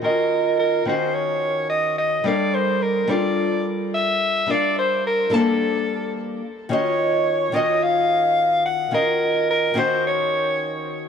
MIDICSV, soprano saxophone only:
0, 0, Header, 1, 2, 480
1, 0, Start_track
1, 0, Tempo, 555556
1, 34, Time_signature, 4, 2, 24, 8
1, 9577, End_track
2, 0, Start_track
2, 0, Title_t, "Soprano saxophone"
2, 0, Program_c, 0, 64
2, 37, Note_on_c, 0, 70, 93
2, 482, Note_off_c, 0, 70, 0
2, 513, Note_on_c, 0, 70, 88
2, 755, Note_on_c, 0, 72, 87
2, 768, Note_off_c, 0, 70, 0
2, 990, Note_on_c, 0, 73, 101
2, 1002, Note_off_c, 0, 72, 0
2, 1461, Note_off_c, 0, 73, 0
2, 1466, Note_on_c, 0, 75, 92
2, 1693, Note_off_c, 0, 75, 0
2, 1711, Note_on_c, 0, 75, 88
2, 1957, Note_on_c, 0, 74, 88
2, 1970, Note_off_c, 0, 75, 0
2, 2199, Note_on_c, 0, 72, 86
2, 2212, Note_off_c, 0, 74, 0
2, 2439, Note_on_c, 0, 70, 81
2, 2452, Note_off_c, 0, 72, 0
2, 2677, Note_on_c, 0, 74, 95
2, 2690, Note_off_c, 0, 70, 0
2, 3163, Note_off_c, 0, 74, 0
2, 3404, Note_on_c, 0, 76, 107
2, 3893, Note_on_c, 0, 74, 99
2, 3906, Note_off_c, 0, 76, 0
2, 4124, Note_off_c, 0, 74, 0
2, 4135, Note_on_c, 0, 72, 86
2, 4349, Note_off_c, 0, 72, 0
2, 4379, Note_on_c, 0, 70, 92
2, 4618, Note_on_c, 0, 69, 88
2, 4631, Note_off_c, 0, 70, 0
2, 5326, Note_off_c, 0, 69, 0
2, 5801, Note_on_c, 0, 73, 98
2, 6517, Note_on_c, 0, 75, 91
2, 6530, Note_off_c, 0, 73, 0
2, 6764, Note_on_c, 0, 77, 104
2, 6777, Note_off_c, 0, 75, 0
2, 7474, Note_off_c, 0, 77, 0
2, 7479, Note_on_c, 0, 78, 96
2, 7700, Note_off_c, 0, 78, 0
2, 7726, Note_on_c, 0, 70, 95
2, 8167, Note_off_c, 0, 70, 0
2, 8213, Note_on_c, 0, 70, 92
2, 8427, Note_off_c, 0, 70, 0
2, 8455, Note_on_c, 0, 72, 90
2, 8669, Note_off_c, 0, 72, 0
2, 8700, Note_on_c, 0, 73, 94
2, 9373, Note_off_c, 0, 73, 0
2, 9577, End_track
0, 0, End_of_file